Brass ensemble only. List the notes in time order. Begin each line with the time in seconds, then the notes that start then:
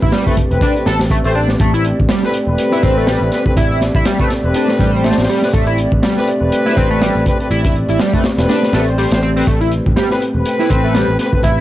0.26 C4 G4 A4 B4
0.51 C4 G4 A4 B4
1.25 C4 G4 A4 C5
2.23 C4 G4 A4 B4
2.48 C4 G4 A4 B4
3.32 C4 G4 A4 B4
3.46 C4 G4 A4 B4
4.20 C4 G4 A4 B4
4.45 C4 G4 A4 B4
4.94 C4 G4 A4 C5
5.18 C4 G4 A4 C5
5.43 C4 G4 A4 B4
6.17 C4 G4 A4 B4
6.41 C4 G4 A4 B4
7.26 C4 G4 A4 B4
7.40 C4 G4 A4 B4
8.14 C4 G4 A4 B4
8.38 C4 G4 A4 B4
8.88 C4 G4 A4 C5
9.12 C4 G4 A4 C5
9.37 C4 G4 A4 B4
10.10 C4 G4 A4 B4
10.35 C4 G4 A4 B4
11.19 C4 G4 A4 B4
11.33 C4 G4 A4 B4